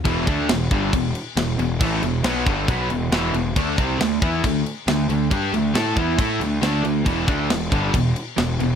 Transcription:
<<
  \new Staff \with { instrumentName = "Distorted electric guitar" } { \clef bass \time 4/4 \key e \minor \tempo 4 = 137 <e, b, e>8 <d a d'>8 <e, b,>8 <g, d g>8 <e, b,>8 r8 <e, b,>8 <e, b,>8 | <a, e a>8 <e, b,>8 <b, fis b>8 <g, d g>8 <b, fis b>8 <e, b,>8 <e, b, e>8 <e, b,>8 | <d a d'>8 <c g c'>8 <d a>8 <e b e'>8 <d a>8 r8 <d a>8 <d a>8 | <g d' g'>8 <d a>8 <a e' a'>8 <e b e'>8 <a e' a'>8 <d a>8 <d a d'>8 <d a>8 |
<e, b, e>8 <d a d'>8 <e, b,>8 <g, d g>8 <e, b,>8 r8 <e, b,>8 <e, b,>8 | }
  \new Staff \with { instrumentName = "Distorted electric guitar" } { \clef bass \time 4/4 \key e \minor <e, b, e>8 <d a d'>8 <e, b,>8 <g, d g>8 <e, b,>8 r8 <e, b,>8 <e, b,>8 | <a, e a>8 <e, b,>8 <b, fis b>8 <g, d g>8 <b, fis b>8 <e, b,>8 <e, b, e>8 <e, b,>8 | <d a d'>8 <c g c'>8 <d a>8 <e b e'>8 <d a>8 r8 <d a>8 <d a>8 | <g d' g'>8 <d a>8 <a e' a'>8 <e b e'>8 <a e' a'>8 <d a>8 <d a d'>8 <d a>8 |
<e, b, e>8 <d a d'>8 <e, b,>8 <g, d g>8 <e, b,>8 r8 <e, b,>8 <e, b,>8 | }
  \new Staff \with { instrumentName = "Overdriven electric guitar" } { \clef bass \time 4/4 \key e \minor <e, b, e>8 <d a d'>8 <e, b,>8 <g, d g>8 <e, b,>8 r8 <e, b,>8 <e, b,>8 | <a, e a>8 <e, b,>8 <b, fis b>8 <g, d g>8 <b, fis b>8 <e, b,>8 <e, b, e>8 <e, b,>8 | <d a d'>8 <c g c'>8 <d a>8 <e b e'>8 <d a>8 r8 <d a>8 <d a>8 | <g d' g'>8 <d a>8 <a e' a'>8 <e b e'>8 <a e' a'>8 <d a>8 <d a d'>8 <d a>8 |
<e, b, e>8 <d a d'>8 <e, b,>8 <g, d g>8 <e, b,>8 r8 <e, b,>8 <e, b,>8 | }
  \new Staff \with { instrumentName = "Picked electric bass" } { \clef bass \time 4/4 \key e \minor e,,8 d,8 e,,8 g,,8 e,,8 r8 e,,8 e,,8 | a,,8 e,,8 b,,8 g,,8 b,,8 e,,8 e,,8 e,,8 | d,8 c,8 d,8 e,8 d,8 r8 d,8 d,8 | g,8 d,8 a,8 e,8 a,8 d,8 d,8 d,8 |
e,,8 d,8 e,,8 g,,8 e,,8 r8 e,,8 e,,8 | }
  \new DrumStaff \with { instrumentName = "Drums" } \drummode { \time 4/4 <cymc bd>8 <cymc bd>8 <cymc sn>8 <cymc bd>8 <cymc bd>8 cymc8 <cymc sn>8 cymc8 | <cymc bd>8 cymc8 <cymc sn>8 <cymc bd>8 <cymc bd>8 cymc8 <cymc sn>8 cymc8 | <cymc bd>8 <cymc bd>8 <cymc sn>8 <cymc bd>8 <cymc bd>8 cymc8 <cymc sn>8 cymc8 | <cymc bd>8 cymc8 <cymc sn>8 <cymc bd>8 <cymc bd>8 cymc8 <cymc sn>8 cymc8 |
<cymc bd>8 <cymc bd>8 <cymc sn>8 <cymc bd>8 <cymc bd>8 cymc8 <cymc sn>8 cymc8 | }
>>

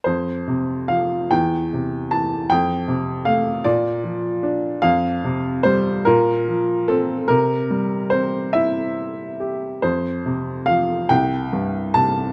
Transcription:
<<
  \new Staff \with { instrumentName = "Upright piano" } { \time 6/8 \key f \major \tempo 4. = 48 c''4 f''8 g''4 a''8 | g''4 f''8 d''4 r8 | f''4 c''8 bes'4 a'8 | bes'4 c''8 e''4 r8 |
c''4 f''8 g''4 a''8 | }
  \new Staff \with { instrumentName = "Upright piano" } { \clef bass \time 6/8 \key f \major f,8 c8 f8 e,8 c8 e8 | f,8 c8 a8 bes,8 f8 d'8 | f,8 c8 g8 bes,8 f8 c'8 | c8 g8 c'8 e'4 g'8 |
f,8 c8 f8 c,8 g,8 c8 | }
>>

